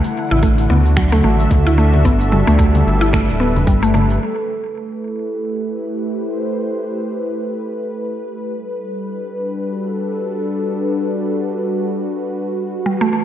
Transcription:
0.00 2.05 D3 medium
0.00 0.29 A3 medium
0.00 0.76 E4 loud
0.00 0.76 B4 medium
0.00 0.76 F#5 medium
0.04 open hi-hat soft
0.04 shaker soft
0.14 5.51 D4 medium
0.14 shaker medium
0.24 2.92 F#4 medium
0.31 0.67 A1 loud
0.31 0.42 E4 loud
0.31 low conga medium
0.31 shaker soft
0.43 0.69 A3 medium
0.43 kick loud
0.43 open hi-hat medium
0.43 shaker soft
0.58 open hi-hat soft
0.58 shaker soft
0.65 5.96 A4 medium
0.70 1.21 D2 medium
0.70 0.85 B3 medium
0.70 low conga medium
0.70 shaker medium
0.86 5.95 E5 medium
0.86 open hi-hat soft
0.86 shaker soft
0.97 1.11 F#3 medium
0.97 finger snap medium
0.97 kick loud
0.97 open hi-hat medium
0.97 shaker soft
1.12 1.23 A3 loud
1.12 open hi-hat soft
1.12 low conga medium
1.12 shaker soft
1.24 1.47 A1 medium
1.24 1.65 A3 medium
1.24 shaker medium
1.40 open hi-hat soft
1.40 shaker soft
1.51 2.06 D2 medium
1.51 kick loud
1.51 open hi-hat medium
1.51 low conga medium
1.51 shaker soft
1.67 1.77 E4 loud
1.67 open hi-hat soft
1.67 shaker soft
1.78 2.04 A3 medium
1.78 shaker medium
1.94 low conga medium
1.94 shaker soft
2.05 2.44 G1 medium
2.05 4.21 G3 medium
2.05 2.20 B3 medium
2.05 kick loud
2.05 open hi-hat medium
2.05 shaker soft
2.21 open hi-hat soft
2.21 shaker soft
2.32 2.46 G3 medium
2.32 low conga medium
2.32 shaker medium
2.47 2.83 D2 loud
2.47 2.58 A3 loud
2.47 open hi-hat soft
2.47 shaker soft
2.59 3.00 A3 medium
2.59 kick loud
2.59 open hi-hat medium
2.59 shaker soft
2.75 open hi-hat soft
2.75 low conga medium
2.75 shaker soft
2.86 3.28 G1 loud
2.86 13.24 B4 medium
2.86 shaker medium
3.01 3.12 E4 loud
3.01 open hi-hat soft
3.01 shaker soft
3.13 3.39 A3 medium
3.13 finger snap medium
3.13 kick loud
3.13 open hi-hat medium
3.13 low conga medium
3.13 shaker soft
3.29 3.55 D1 medium
3.29 open hi-hat soft
3.29 shaker soft
3.40 3.55 B3 medium
3.40 shaker medium
3.56 3.69 E1 loud
3.56 open hi-hat soft
3.56 low conga medium
3.56 shaker soft
3.67 4.18 G1 medium
3.67 3.81 G3 medium
3.67 kick loud
3.67 open hi-hat medium
3.67 shaker soft
3.83 3.93 A3 loud
3.83 open hi-hat soft
3.83 shaker soft
3.94 4.21 A3 medium
3.94 low conga medium
3.94 shaker medium
4.10 open hi-hat soft
4.10 shaker soft
4.21 8.54 A3 medium
4.21 13.24 A4 medium
4.47 10.28 E4 medium
4.66 8.53 G4 medium
5.72 8.54 C5 medium
8.53 12.86 G3 medium
8.94 13.24 D4 medium
9.13 13.24 F#4 medium
9.35 13.24 A4 medium
12.86 13.24 E3 medium
12.86 13.00 G3 medium
13.01 13.12 A3 loud
13.13 13.24 A3 medium

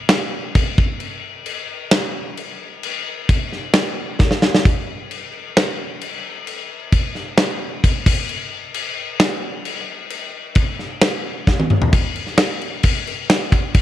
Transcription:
0.09 snare loud
0.09 crash medium
0.55 kick medium
0.55 crash medium
0.78 kick loud
1.00 crash medium
1.46 crash medium
1.91 snare loud
1.91 crash medium
2.37 crash medium
2.83 crash medium
3.29 kick medium
3.29 crash medium
3.52 snare soft
3.74 snare loud
3.74 crash medium
4.19 kick loud
4.19 snare medium
4.31 snare medium
4.42 snare loud
4.54 snare loud
4.65 kick loud
4.65 crash medium
5.11 crash medium
5.57 snare loud
5.57 crash medium
6.01 crash medium
6.47 crash medium
6.92 kick medium
6.92 crash medium
7.15 snare soft
7.38 snare loud
7.38 crash medium
7.84 kick loud
7.84 crash medium
8.06 kick loud
8.06 crash loud
8.29 crash medium
8.74 crash medium
9.20 snare loud
9.20 crash medium
9.65 crash medium
10.10 crash medium
10.55 kick medium
10.55 crash medium
10.79 snare soft
11.01 snare loud
11.01 crash medium
11.47 kick medium
11.47 snare medium
11.60 high tom medium
11.70 mid tom loud
11.82 floor tom loud
11.93 kick loud
11.93 crash medium
12.16 crash medium
12.27 snare soft
12.38 snare loud
12.38 crash medium
12.62 crash medium
12.83 kick medium
12.83 crash medium
13.07 crash medium
13.30 snare loud
13.30 crash medium
13.52 kick medium
13.52 crash medium
13.74 kick loud
13.74 crash medium

